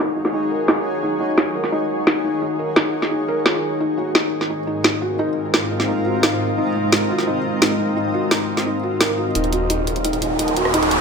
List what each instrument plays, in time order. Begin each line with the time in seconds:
Already playing: ambient pad D#4 F#4 G#4 C#5, analog synth pad D#4 A#4 F5 F#5
0.16 felt piano D#4
0.25 snare
0.34 felt piano D#4
0.51 felt piano A#4
0.68 felt piano D#4, snare
1.03 felt piano D#4
1.20 felt piano D#4
1.38 felt piano D#4, snare
1.55 felt piano A#4
1.64 snare
1.72 felt piano D#4
2.07 felt piano D#4, snare
2.24 felt piano D#4
2.42 felt piano D#4
2.59 felt piano A#4
2.76 felt piano D#4, snare
3.02 snare
3.11 felt piano D#4
3.28 felt piano A#4
3.46 felt piano F4, snare
3.80 ambient pad G#2, analog synth pad G#3 C5, felt piano D#4
3.95 ambient pad C4 F4 A#4, felt piano F#4
4.15 felt piano D#4, snare
4.41 snare
4.50 felt piano D#4, ambient pad D#5
4.67 felt piano D#4
4.84 felt piano D#4, snare
5.02 felt piano F#4
5.19 felt piano D#4
5.54 felt piano D#4, snare
5.71 felt piano D#4
5.80 snare
5.88 felt piano D#4
6.06 felt piano F#4
6.23 felt piano D#4, snare
6.58 felt piano D#4
6.75 felt piano D#4
6.92 felt piano D#4, snare
7.10 felt piano F#4
7.18 snare
7.27 felt piano D#4
7.62 felt piano D#4, snare
7.79 felt piano D#4
7.96 felt piano D#4
8.14 felt piano F#4
8.31 felt piano D#4, snare
8.57 snare
8.66 felt piano D#4
8.83 felt piano F#4
9.01 felt piano A#4, snare
9.18 felt piano F#4
9.35 detuned saw bass D#1, ambient pad D#4, felt piano D#4, analog synth pad D#4 A#4 F5 F#5, closed hi-hat, riser
9.44 closed hi-hat
9.51 felt piano F#4, ambient pad G#4, closed hi-hat
9.61 ambient pad C#5
9.70 felt piano D#4, closed hi-hat
9.87 closed hi-hat
9.96 closed hi-hat
10.04 felt piano D#4, ambient pad F#4, closed hi-hat
10.13 closed hi-hat
10.22 detuned saw bass D#1, felt piano D#4, closed hi-hat
10.39 detuned saw bass D#1, felt piano D#4, closed hi-hat
10.48 closed hi-hat
10.57 felt piano F#4, closed hi-hat
10.65 cross-stick
10.74 felt piano D#4, closed hi-hat
10.83 closed hi-hat
10.91 closed hi-hat